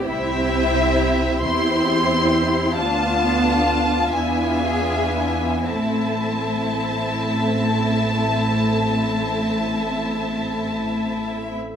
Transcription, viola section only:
X:1
M:12/8
L:1/8
Q:3/8=40
K:Am
V:1 name="Viola section"
[CE]3 [CE]3 [B,D]3 [B,D]3 | [A,C]12 |]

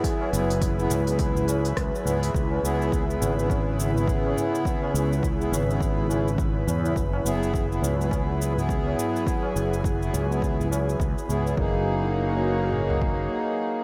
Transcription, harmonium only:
X:1
M:4/4
L:1/16
Q:"Swing 16ths" 1/4=104
K:F#mix
V:1 name="Harmonium"
[B,EG]2 [B,EG] z2 [B,EG]2 [B,EG]3 z4 [B,EG]2 | z2 [B,EG]3 [B,EG]2 [B,EG]4 [B,EG]4- [B,EG]- | [B,EG]2 [B,EG] z2 [B,EG]2 [B,EG]3 [B,EG] z4 [B,EG] | z2 [B,EG]3 [B,EG]2 [B,EG]4 [B,EG]4- [B,EG]- |
[B,EG]2 [B,EG] z2 [B,EG]2 [B,EG]3 z4 [B,EG]2 | [A,DG]16 |]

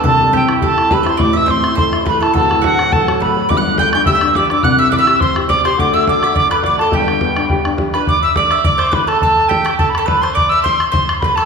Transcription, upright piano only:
X:1
M:4/4
L:1/8
Q:"Swing" 1/4=209
K:G
V:1 name="Upright piano"
[C,,C,] G, C E G E G E | [A,,,A,,] E, C E A E A E | [D,,,D,,] A,, D, F, A, F, A, F, | [G,,,G,,] D, A, D G D G D |
[C,,C,] G, E G c G c G | [D,,D,] A, F A d A d A | [G,,,G,,] D, B, D G D G D | z8 |
z8 | z8 |]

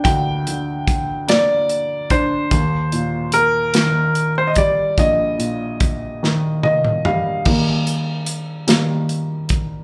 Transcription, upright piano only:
X:1
M:6/8
L:1/8
Q:3/8=49
K:Eblyd
V:1 name="Upright piano"
z6 | z6 | z4 e f | z6 |]
V:2 name="Upright piano" clef=bass
[D,,B,D] D,2 B,2 D | E,, B,,2 E,2 G, | B,,, B,,2 E,2 G, | [E,G,B,] z2 [E,G,B,] z2 |]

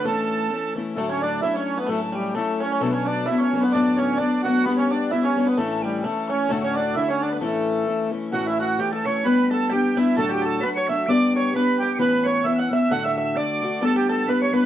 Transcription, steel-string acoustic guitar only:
X:1
M:2/4
L:1/8
Q:"Swing" 1/4=130
K:Amix
V:1 name="Steel-string acoustic guitar"
[A,,E,A,CE]2 [E,A,CE] [E,A,CE] | [D,,A,,F,A,DE]2 [F,A,DE]2 | [A,,F,A,CE]2 [F,A,CE]2 | [B,,F,A,B,D]2 [F,A,B,D] [F,A,B,D] |
[D,,A,,F,A,B,D]2 [F,A,B,D] [F,A,B,D] | [G,B,DG]2 [G,B,DG] [G,B,DG] | [A,,E,A,CE]2 [E,A,CE]2 | [D,,A,,D,A,DF]2 [D,A,DF]2 |
[A,,E,A,CE]2 [A,CE] [E,A,CE] | [A,,E,A,CE]2 [E,A,CE] [E,A,CE] | [G,B,DG]2 [G,B,DG] [G,B,DG] | [D,,A,,F,A,DF]2 [F,A,DF] [F,A,DF] |
[G,B,DG]2 [G,B,DG]2 | [A,,E,B,CE]2 [E,B,CE] [E,B,CE] | [A,,D,A,DF]2 [D,A,DF] [D,A,DF] | [G,B,DG]2 [G,B,DG] [G,B,DG] |]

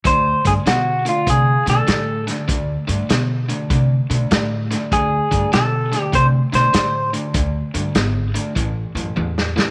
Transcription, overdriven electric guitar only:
X:1
M:4/4
L:1/8
Q:"Swing" 1/4=99
K:Ador
V:1 name="Overdriven electric guitar" clef=bass
[D,A,] [D,A,] [D,B,] [D,A,] [D,A,] [D,A,] [D,A,] [D,A,] | [D,A,] [D,A,] [D,B,] [D,A,] [D,A,] [D,A,] [D,A,] [D,A,] | [D,A,] [D,A,] [D,B,] [D,A,] [D,A,] [D,A,] [D,A,] [D,A,] | [D,A,] [D,A,] [D,B,] [D,A,] [A,,E,] [A,,E,] [A,,E,] [A,,E,] |]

